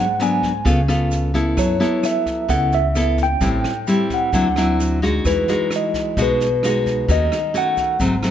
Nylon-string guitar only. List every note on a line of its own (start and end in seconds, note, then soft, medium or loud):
0.00 0.64 G#2 soft
0.20 0.51 F#3 medium
0.20 0.51 B3 medium
0.20 0.51 D4 medium
0.65 1.55 C#3 medium
0.65 0.79 B3 medium
0.65 0.79 F4 soft
0.65 0.80 A4 medium
0.88 1.31 B3 medium
0.88 1.31 F4 soft
0.88 1.31 A4 medium
1.34 1.77 B3 medium
1.34 1.77 E4 medium
1.34 1.77 A4 medium
1.57 2.47 F#3 soft
1.80 2.46 B3 medium
1.80 2.46 E4 medium
1.80 2.46 A4 medium
2.48 3.39 C#3 medium
2.48 2.79 B3 medium
2.48 2.79 E4 medium
2.48 2.79 A4 medium
2.96 3.25 B3 medium
2.96 3.25 E4 medium
2.96 3.25 A4 medium
3.41 4.31 A2 soft
3.41 3.71 G3 soft
3.41 3.71 C4 soft
3.41 3.71 E4 medium
3.87 4.31 G3 medium
3.87 4.32 C4 medium
3.87 4.32 E4 medium
4.33 5.23 D3 medium
4.33 4.47 F#3 soft
4.33 4.47 C4 soft
4.33 4.47 E4 medium
4.57 4.99 F#3 medium
4.57 4.99 C4 soft
4.57 4.99 E4 medium
5.02 5.44 G#3 medium
5.02 5.44 D#4 medium
5.02 5.45 F#4 medium
5.26 6.15 E3 soft
5.49 6.13 G#3 medium
5.49 6.14 D#4 medium
5.49 6.14 F#4 medium
6.18 7.07 B2 medium
6.18 6.47 G#3 medium
6.18 6.47 D#4 medium
6.18 6.47 F#4 medium
6.64 7.05 G#3 medium
6.64 7.06 D#4 soft
6.64 7.06 F#4 medium
7.08 7.98 D#3 soft
7.08 7.38 A3 soft
7.08 7.38 C#4 medium
7.08 7.38 F#4 medium
7.54 7.98 A3 medium
7.54 7.98 C#4 medium
7.54 7.99 F#4 medium
8.00 8.31 G#2 medium
8.00 8.14 F#3 medium
8.00 8.14 A3 medium
8.00 8.14 C4 medium
8.23 8.31 F#3 soft
8.23 8.31 A3 medium
8.23 8.31 C4 medium